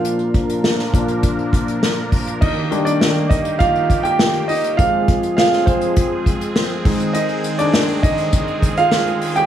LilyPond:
<<
  \new Staff \with { instrumentName = "Grand piano" } { \time 4/4 \key ees \major \tempo 4 = 102 <f' f''>2. r4 | <ees' ees''>8. <d' d''>8. <ees' ees''>8 <f' f''>8. <g' g''>8. <ees' ees''>8 | <f' f''>4 <f' f''>8 c''2 r8 | <ees' ees''>8. <d' d''>8. <ees' ees''>4~ <ees' ees''>16 <f' f''>4 <g' g''>16 | }
  \new Staff \with { instrumentName = "Grand piano" } { \clef bass \time 4/4 \key ees \major <bes, f d'>4. <bes, f d'>8 r2 | r8 <ees g d'>8 r2. | <f aes c'>4. <f aes c'>8 r4. <aes c' ees'>8~ | <aes c' ees'>4 r2. | }
  \new Staff \with { instrumentName = "Analog synth pad" } { \time 4/4 \key ees \major << { <d' bes'>1 | g'1 | <c' aes'>1~ | <c' aes'>1 | } \\ { <f bes>1 | <ees bes>1 | <f aes>2.~ <f aes>8 <ees aes>8~ | <ees aes>1 | } >> }
  \new DrumStaff \with { instrumentName = "Drums" } \drummode { \time 4/4 hh16 hh16 <hh bd>16 hh16 sn16 sn16 <hh bd>16 hh16 <hh bd>16 hh16 <hh bd>16 hh16 sn16 hh16 <hho bd>16 hh16 | <cymc bd>8 hh16 hh16 sn16 hh16 <hh bd>16 hh16 <hh bd>16 hh16 <hh bd>16 hh16 sn16 hh16 hho16 hh16 | <hh bd>8 <hh bd>16 hh16 sn16 sn16 <hh bd>16 hh16 <hh bd>8 <hh bd>16 hh16 sn8 <hho bd>16 hh16 | hh16 hh16 hh16 hh16 sn16 hh16 <hh bd>16 hh16 <hh bd>16 hh16 <hh bd>16 hh16 sn16 hh16 hho16 hh16 | }
>>